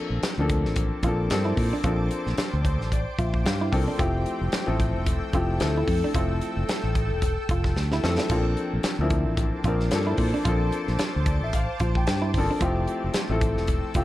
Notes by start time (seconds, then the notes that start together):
Already playing: F3 A#3 C4 D4 A4 C5 A5 D6
0.10 A#1
0.23 snare, closed hi-hat
0.38 D2 F3 A#3 C4 D4 A4
0.49 kick, closed hi-hat
0.65 A1, snare
0.76 kick, closed hi-hat
1.03 A#1 F3 A#3 C4 D4 F4, kick, closed hi-hat
1.07 A4
1.30 G2 F3 A#3 C4 D4 A4, snare, closed hi-hat
1.45 E4
1.57 A#2, kick, open hi-hat
1.73 D4
1.84 A#1 F3 A#3 C4 D4 F4 A4 G5, kick, closed hi-hat
2.11 closed hi-hat
2.27 A#1, snare
2.38 muted fingered electric bass stroke, snare, closed hi-hat
2.53 D2
2.65 C5, kick, closed hi-hat
2.79 A1, snare
2.92 D5, kick, closed hi-hat
3.18 A#1 F4 E5, kick, closed hi-hat
3.34 kick
3.45 G2 F5, snare, closed hi-hat
3.61 E4
3.72 C2 F3 A#3 C4 D4 A4 G5, kick, open hi-hat
3.88 D4
3.98 F1 F3 A3 C4 E4 F4 G4 A4 E6, kick, closed hi-hat
4.26 closed hi-hat
4.41 F1
4.52 muted fingered electric bass stroke, snare, closed hi-hat
4.66 A1 F3 A3 C4 E4 A4
4.80 kick, closed hi-hat
4.95 E1
5.06 kick, closed hi-hat
5.33 F1 F3 A3 C4 E4 F4 G4, kick, closed hi-hat
5.60 D2 F3 A3 C4 E4 A4, snare, closed hi-hat
5.77 E4
5.88 F2, kick, open hi-hat
6.04 D4
6.14 F1 F3 A3 C4 E4 F4 A4, kick, closed hi-hat
6.41 closed hi-hat
6.57 F1
6.69 snare, closed hi-hat
6.83 A1
6.95 kick, closed hi-hat
7.11 E1
7.22 kick, closed hi-hat
7.49 F1 F4, kick, closed hi-hat
7.64 kick, snare
7.76 D2, snare
7.92 E4, snare
8.03 F2 F3 A3 C4 E4 A4, snare
8.18 D4, snare
8.29 A#1 F3 A#3 C4 D4 F4 A4 C5 A5 D6, kick, closed hi-hat, splash
8.57 closed hi-hat
8.73 A#1
8.83 muted fingered electric bass stroke, snare, closed hi-hat
8.99 D2 F3 A#3 C4 D4 E4
9.10 kick, closed hi-hat
9.26 A1
9.37 kick, closed hi-hat
9.64 A#1 F3 A#3 C4 D4 F4 A#4, kick, closed hi-hat
9.80 snare
9.91 G2 F3 A#3 C4 D4 A4, snare, closed hi-hat
10.07 E4
10.18 A#2, kick, open hi-hat
10.34 D4
10.45 A#1 F3 A#3 C4 D4 F4 A4, kick, closed hi-hat
10.72 closed hi-hat
10.88 A#1, snare
10.99 muted fingered electric bass stroke, snare, closed hi-hat
11.16 D2
11.26 D5, kick, closed hi-hat
11.42 A1 E5
11.53 F5, kick, closed hi-hat
11.80 A#1 F4, kick, closed hi-hat
11.95 G5, kick
12.07 G2 G5, snare, closed hi-hat
12.22 E4
12.34 G1 F3 A#3 C4, kick, open hi-hat
12.38 D4 A4 A5
12.51 D4
12.60 F1 F3 A3 C4 E4 F4 G4 A4 G5 E6, kick, closed hi-hat
12.88 closed hi-hat
13.04 F1
13.14 muted fingered electric bass stroke, snare, closed hi-hat
13.29 A1 F3 A3 C4 E4 A4
13.41 kick, closed hi-hat
13.56 E1, snare
13.67 kick, closed hi-hat
13.94 F1 F3 A3 C4 E4 F4 G4, kick, closed hi-hat